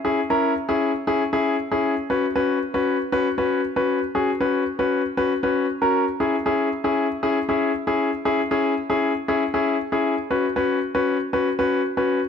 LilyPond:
\new Staff \with { instrumentName = "Grand piano" } { \time 4/4 \key cis \dorian \tempo 4 = 117 <cis' e' gis'>16 r16 <cis' e' ais'>8 r16 <cis' e' gis'>8 r16 <cis' e' gis'>16 r16 <cis' e' gis'>8 r16 <cis' e' gis'>8 r16 | <cis' fis' b'>16 r16 <cis' fis' b'>8 r16 <cis' fis' b'>8 r16 <cis' fis' b'>16 r16 <cis' fis' b'>8 r16 <cis' fis' b'>8 r16 | <cis' fis' gis'>16 r16 <cis' fis' b'>8 r16 <cis' fis' b'>8 r16 <cis' fis' b'>16 r16 <cis' fis' b'>8 r16 <cis' fis' ais'>8 r16 | <cis' e' gis'>16 r16 <cis' e' gis'>8 r16 <cis' e' gis'>8 r16 <cis' e' gis'>16 r16 <cis' e' gis'>8 r16 <cis' e' gis'>8 r16 |
<cis' e' gis'>16 r16 <cis' e' gis'>8 r16 <cis' e' gis'>8 r16 <cis' e' gis'>16 r16 <cis' e' gis'>8 r16 <cis' e' gis'>8 r16 | <cis' fis' b'>16 r16 <cis' fis' b'>8 r16 <cis' fis' b'>8 r16 <cis' fis' b'>16 r16 <cis' fis' b'>8 r16 <cis' fis' b'>8 r16 | }